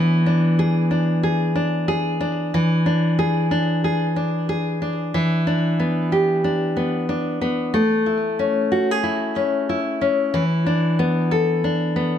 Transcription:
0.00 2.54 E3 medium
0.00 3.12 B3 medium
0.00 0.26 D4 medium
0.00 0.29 G#4 medium
0.26 0.90 D4 medium
0.59 1.22 G#4 medium
0.91 1.55 D4 soft
1.23 1.87 G#4 medium
1.56 2.20 D4 medium
1.88 3.18 G#4 medium
2.21 2.86 D4 medium
2.54 5.14 E3 medium
2.86 3.51 D4 medium
3.19 3.83 G#4 medium
3.51 4.16 D4 medium
3.84 4.48 G#4 medium
4.16 4.81 D4 medium
4.49 5.22 G#4 medium
4.82 5.47 D4 medium
5.14 7.73 E3 medium
5.47 6.43 D4 medium
5.79 6.75 B3 medium
6.12 7.82 G4 medium
6.44 7.08 D4 medium
6.77 7.40 B3 medium
7.09 7.82 D4 medium
7.41 7.82 B3 medium
7.74 10.33 A3 medium
8.06 9.03 E4 medium
8.39 9.35 C#4 medium
8.72 8.91 F#4 medium
8.91 10.42 G#4 soft
9.03 9.69 E4 medium
9.36 10.00 C#4 soft
9.69 10.66 E4 medium
10.01 10.42 C#4 medium
10.34 12.18 E3 medium
10.66 11.64 D4 medium
10.99 11.96 B3 medium
11.31 12.18 A4 medium
11.64 12.18 D4 medium
11.96 12.18 B3 medium

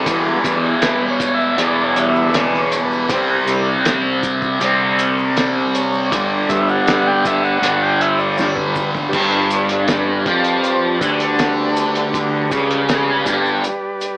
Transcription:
0.00 1.60 G2 medium
0.00 2.21 D3 medium
0.00 0.36 G3 medium
0.00 0.17 A4 medium
0.06 1.55 E2 loud
0.06 0.35 E2 medium
0.06 1.56 B2 medium
0.06 0.57 E3 medium
0.06 1.57 E3 medium
0.06 0.58 G3 soft
0.06 0.58 B3 medium
0.06 kick loud
0.06 closed hi-hat medium
0.06 maracas medium
0.36 0.98 G3 medium
0.44 0.73 E2 medium
0.44 kick medium
0.44 closed hi-hat medium
0.44 maracas medium
0.82 1.06 B4 medium
0.82 snare loud
0.82 closed hi-hat loud
0.82 maracas medium
0.98 2.84 G3 medium
1.10 1.35 C#5 loud
1.20 kick medium
1.20 closed hi-hat medium
1.20 maracas medium
1.34 1.59 E5 loud
1.40 maracas soft
1.57 3.07 E2 medium
1.57 2.73 E2 medium
1.57 4.07 G2 medium
1.57 3.08 B2 medium
1.57 3.08 E3 medium
1.57 1.85 D5 medium
1.57 closed hi-hat medium
1.57 maracas medium
1.85 2.10 C#5 medium
1.96 2.30 E3 medium
1.96 2.30 G3 soft
1.96 2.31 B3 medium
1.96 closed hi-hat medium
1.96 maracas medium
2.10 2.35 E5 medium
2.16 maracas soft
2.21 4.69 D3 medium
2.33 2.60 D5 medium
2.33 snare loud
2.33 closed hi-hat medium
2.33 maracas medium
2.54 snare soft
2.61 2.86 C#5 medium
2.72 closed hi-hat medium
2.72 maracas medium
2.84 3.46 G3 medium
2.84 3.20 B4 medium
2.92 maracas soft
3.09 3.38 C2 loud
3.09 4.59 C3 loud
3.09 4.62 G3 medium
3.09 3.62 G3 medium
3.09 4.60 C4 medium
3.09 kick loud
3.09 closed hi-hat loud
3.09 maracas medium
3.13 3.62 C4 medium
3.46 3.75 C2 loud
3.46 5.30 G3 medium
3.46 closed hi-hat medium
3.46 maracas medium
3.85 snare loud
3.85 closed hi-hat loud
3.85 maracas medium
4.07 6.54 G2 medium
4.23 kick medium
4.23 closed hi-hat medium
4.23 maracas medium
4.42 kick medium
4.42 maracas soft
4.60 5.75 C2 loud
4.60 6.09 C3 medium
4.60 6.14 G3 medium
4.60 6.11 C4 medium
4.60 closed hi-hat medium
4.60 maracas medium
4.70 7.16 D3 medium
4.99 closed hi-hat medium
4.99 maracas medium
5.19 maracas soft
5.30 5.93 G3 medium
5.37 snare loud
5.37 closed hi-hat medium
5.37 maracas medium
5.75 6.13 C#5 medium
5.75 closed hi-hat medium
5.75 maracas medium
5.93 7.77 G3 medium
5.93 maracas soft
6.11 6.41 G1 loud
6.11 7.60 G2 medium
6.11 7.61 D3 loud
6.11 7.62 G3 loud
6.11 6.50 D5 medium
6.11 kick loud
6.11 closed hi-hat medium
6.11 maracas medium
6.48 6.78 G1 loud
6.48 7.58 D3 medium
6.48 7.58 G3 soft
6.48 7.59 B3 medium
6.48 6.69 E5 medium
6.48 kick medium
6.48 closed hi-hat medium
6.48 maracas medium
6.54 13.69 G2 medium
6.69 7.08 F#5 loud
6.69 maracas soft
6.87 snare loud
6.87 closed hi-hat medium
6.87 maracas medium
7.07 7.26 G5 loud
7.16 14.17 D3 medium
7.25 7.44 E5 loud
7.25 kick medium
7.25 closed hi-hat medium
7.25 maracas medium
7.44 7.83 F#5 medium
7.44 maracas soft
7.62 8.76 G1 loud
7.62 9.11 G2 medium
7.62 9.12 D3 medium
7.62 9.12 G3 medium
7.62 closed hi-hat medium
7.62 maracas medium
7.77 8.39 G3 medium
7.82 8.01 G5 loud
8.01 8.20 E5 loud
8.01 closed hi-hat medium
8.18 8.38 D5 medium
8.18 maracas soft
8.38 14.17 G3 medium
8.38 8.43 C#5 medium
8.38 snare medium
8.38 maracas medium
8.48 8.56 C#5 medium
8.55 8.91 B4 medium
8.55 kick medium
8.76 kick medium
8.76 maracas medium
8.95 floor tom medium
8.95 maracas soft
9.09 14.17 G3 medium
9.09 14.17 G4 medium
9.09 14.17 B4 medium
9.09 14.17 D5 medium
9.13 10.22 G1 medium
9.13 10.25 G2 medium
9.13 kick loud
9.13 crash loud
9.13 maracas medium
9.51 closed hi-hat medium
9.51 maracas medium
9.69 closed hi-hat medium
9.88 snare loud
9.88 closed hi-hat medium
9.88 maracas medium
10.26 10.97 F2 medium
10.26 11.00 F3 loud
10.26 kick loud
10.26 closed hi-hat medium
10.44 closed hi-hat medium
10.44 maracas soft
10.64 closed hi-hat medium
10.64 maracas medium
11.01 12.47 D2 medium
11.01 12.50 D3 loud
11.01 kick medium
11.01 closed hi-hat medium
11.01 maracas medium
11.20 closed hi-hat medium
11.20 maracas soft
11.39 snare loud
11.39 closed hi-hat medium
11.39 maracas medium
11.77 closed hi-hat medium
11.77 maracas medium
11.95 closed hi-hat medium
11.95 maracas soft
12.14 kick loud
12.14 closed hi-hat medium
12.14 maracas medium
12.51 13.22 C#2 medium
12.51 13.25 C#3 loud
12.51 kick loud
12.51 closed hi-hat medium
12.51 maracas medium
12.71 closed hi-hat medium
12.89 snare loud
12.89 closed hi-hat medium
12.89 maracas medium
13.26 13.61 G1 loud
13.26 13.62 G2 loud
13.26 kick loud
13.26 closed hi-hat medium
13.26 maracas loud
13.46 maracas soft
13.64 closed hi-hat medium
13.64 maracas medium
14.01 closed hi-hat medium
14.01 maracas loud

